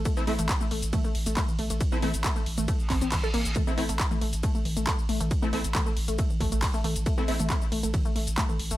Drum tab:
RD |x---x---x---x---|x---x---x---x---|x---x---x---x---|x---x---x---x---|
HH |x-oxx-oxx-oxx-ox|x-oxx-oxx-oxo-ox|x-oxx-oxx-oxx-ox|x-oxx-oxx-oxo-ox|
SH |xx-xxx-xxx-xxx-x|xx-xxx-xxx-xxx-x|xx-xxx-xxx-xxx-x|xx-xxx-xxx-xxx-x|
CP |----x-------x---|----x-----x-x---|----x-------x---|----x-------x---|
T2 |---o----o----o--|--o----o----o---|o----o----o----o|----o----o----o-|
BD |o---o---o---o---|o---o---o-o-o---|o---o---o---o---|o---o---o-o-o---|

RD |x---x---x---x---|
HH |x-oxx-oxx-oxx-ox|
SH |xx-xxx-xxx-xxx-x|
CP |----x-------x---|
T2 |---o----o----o--|
BD |o---o---o---o---|